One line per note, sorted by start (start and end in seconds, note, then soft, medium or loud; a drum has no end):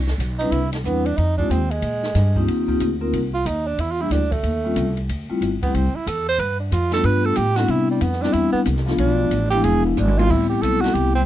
0.00 0.18 C2 medium
0.07 snare medium
0.18 0.50 B1 medium
0.18 hi-hat pedal soft
0.18 ride medium
0.39 0.51 G3 medium
0.39 0.51 C4 medium
0.39 0.51 D4 medium
0.39 0.53 D#4 medium
0.39 0.51 E4 medium
0.39 0.51 B4 medium
0.39 ride medium
0.51 0.83 C2 medium
0.51 0.71 E4 medium
0.51 ride medium
0.72 0.87 G3 soft
0.72 snare medium
0.72 ride medium
0.84 1.16 E2 medium
0.84 1.03 G3 medium
0.84 1.07 B3 medium
0.84 1.03 C4 medium
0.84 1.03 D4 medium
0.84 1.04 E4 medium
0.84 1.03 B4 medium
0.84 hi-hat pedal medium
1.06 1.19 D4 medium
1.06 ride soft
1.18 1.49 F2 medium
1.18 1.37 D#4 loud
1.18 ride medium
1.38 1.49 G#3 medium
1.38 1.49 C4 medium
1.38 1.52 D4 medium
1.38 1.49 D#4 medium
1.38 1.49 F4 medium
1.38 1.49 G4 medium
1.38 kick soft
1.50 1.81 D#2 medium
1.50 1.72 C4 medium
1.50 hi-hat pedal medium
1.50 ride medium
1.71 2.48 G#3 medium
1.71 ride medium
1.82 2.14 A#2 medium
1.82 ride medium
2.03 snare medium
2.15 2.47 G2 medium
2.15 snare soft
2.15 hi-hat pedal medium
2.15 ride medium
2.36 2.67 A#3 medium
2.36 2.67 C4 medium
2.36 2.68 D#4 medium
2.36 2.68 F4 medium
2.36 2.68 G4 medium
2.36 kick medium
2.47 2.79 D#2 medium
2.47 ride medium
2.68 2.79 A#3 medium
2.68 2.79 C4 medium
2.68 2.80 D#4 medium
2.68 2.80 F4 medium
2.68 2.80 G4 medium
2.68 kick soft
2.80 3.12 D2 loud
2.80 hi-hat pedal medium
2.80 ride medium
3.01 3.12 A#3 medium
3.01 3.12 C4 medium
3.01 3.12 D#4 medium
3.01 3.12 F4 medium
3.01 3.12 A#4 medium
3.13 3.45 C2 medium
3.13 ride medium
3.34 3.48 F4 medium
3.46 3.77 D#2 loud
3.46 3.68 D#4 medium
3.46 hi-hat pedal medium
3.46 ride medium
3.67 3.82 D4 medium
3.78 4.10 E2 medium
3.78 3.93 E4 medium
3.78 ride medium
3.91 4.03 F4 medium
3.99 4.10 G3 medium
3.99 4.10 A#3 medium
3.99 4.10 D4 medium
3.99 4.10 E4 medium
3.99 4.14 E4 medium
3.99 4.11 G4 medium
4.11 4.43 D2 medium
4.11 4.34 D4 medium
4.11 snare soft
4.11 hi-hat pedal soft
4.11 ride medium
4.32 5.09 A3 medium
4.32 kick medium
4.32 ride medium
4.43 4.75 D#2 medium
4.43 ride medium
4.64 4.75 G3 medium
4.64 4.76 A#3 medium
4.64 4.76 C4 medium
4.64 4.75 C#4 medium
4.64 4.76 F4 medium
4.76 5.08 C2 loud
4.76 hi-hat pedal medium
4.76 ride medium
4.97 ride soft
5.09 5.28 D2 medium
5.09 ride medium
5.29 5.40 G3 medium
5.29 5.40 A3 medium
5.29 5.40 C4 medium
5.29 5.41 E4 medium
5.29 5.41 F4 medium
5.29 muted upright bass stroke soft
5.41 5.60 G1 medium
5.41 hi-hat pedal soft
5.41 ride medium
5.62 5.73 G3 medium
5.62 5.73 A3 medium
5.62 5.76 B3 medium
5.62 5.74 C4 medium
5.62 5.74 E4 medium
5.62 5.74 G4 medium
5.62 muted upright bass stroke soft
5.62 kick medium
5.62 ride medium
5.74 5.93 C2 medium
5.74 5.97 C4 medium
5.74 ride medium
5.95 6.09 E4 medium
6.07 6.38 E2 loud
6.07 6.28 A4 medium
6.07 hi-hat pedal medium
6.07 ride medium
6.28 6.42 C5 loud
6.38 6.70 G2 medium
6.38 6.59 B4 loud
6.38 ride medium
6.60 6.74 D4 medium
6.72 7.03 F2 medium
6.72 6.93 F4 medium
6.72 hi-hat pedal medium
6.72 ride medium
6.91 7.34 G3 medium
6.91 7.34 A3 medium
6.91 7.34 B3 medium
6.91 7.34 D4 medium
6.91 7.34 F4 medium
6.91 7.07 A4 loud
6.91 snare medium
6.91 ride medium
7.04 7.36 G2 medium
7.04 7.27 B4 loud
7.04 ride medium
7.25 7.39 A4 loud
7.35 7.68 A2 loud
7.35 7.58 G4 loud
7.35 hi-hat pedal medium
7.35 ride medium
7.56 7.99 G3 medium
7.56 7.99 B3 medium
7.56 7.99 C4 medium
7.56 7.99 D4 medium
7.56 7.99 E4 medium
7.56 7.72 F#4 loud
7.56 snare medium
7.56 ride medium
7.68 8.01 C3 medium
7.68 7.90 E4 medium
7.68 ride medium
7.91 8.03 G3 medium
8.01 8.33 F2 medium
8.01 8.23 B3 medium
8.01 hi-hat pedal medium
8.01 ride medium
8.12 snare soft
8.20 8.64 G3 medium
8.20 8.64 B3 medium
8.20 8.64 C4 medium
8.20 8.64 D4 medium
8.20 8.35 D4 loud
8.20 8.64 E4 medium
8.20 snare soft
8.33 8.53 E2 medium
8.33 8.52 E4 medium
8.33 ride medium
8.52 8.60 B3 medium
8.52 muted upright bass stroke soft
8.65 8.98 C2 loud
8.65 hi-hat pedal medium
8.65 ride medium
8.76 snare soft
8.86 9.29 F3 medium
8.86 9.29 A3 medium
8.86 9.29 B3 medium
8.86 9.29 D4 medium
8.86 9.29 F4 medium
8.86 snare medium
8.98 9.30 B1 medium
8.98 9.49 D4 medium
8.98 ride medium
9.31 9.63 A1 loud
9.31 hi-hat pedal medium
9.31 ride medium
9.50 9.95 F3 medium
9.50 9.95 G#3 medium
9.50 9.95 B3 medium
9.50 9.95 D4 medium
9.50 9.95 E4 loud
9.50 9.65 G4 loud
9.50 ride medium
9.64 9.96 E1 loud
9.64 9.85 G#4 loud
9.64 ride medium
9.85 10.00 B3 medium
9.97 10.29 G#1 loud
9.97 10.20 D4 medium
9.97 hi-hat pedal medium
9.97 high tom medium
10.08 high tom medium
10.17 10.60 G3 medium
10.17 10.60 A3 medium
10.17 10.60 B3 medium
10.17 10.60 C4 medium
10.17 10.60 E4 medium
10.17 10.32 F4 loud
10.17 high tom medium
10.30 10.61 A1 medium
10.30 10.49 E4 medium
10.30 kick medium
10.30 crash medium
10.49 10.64 G4 medium
10.62 10.94 B1 medium
10.62 11.11 G3 medium
10.62 11.11 A3 medium
10.62 11.11 B3 medium
10.62 11.11 C4 medium
10.62 11.11 E4 medium
10.62 10.83 A4 loud
10.62 hi-hat pedal soft
10.62 ride medium
10.81 10.96 F#4 medium
10.81 snare medium
10.81 ride medium
10.94 11.26 C2 medium
10.94 11.14 G4 loud
10.94 ride medium
11.15 11.26 G3 medium
11.15 11.26 A3 medium
11.15 11.26 B3 medium
11.15 11.22 C4 medium
11.15 11.26 C4 medium
11.15 11.26 G4 medium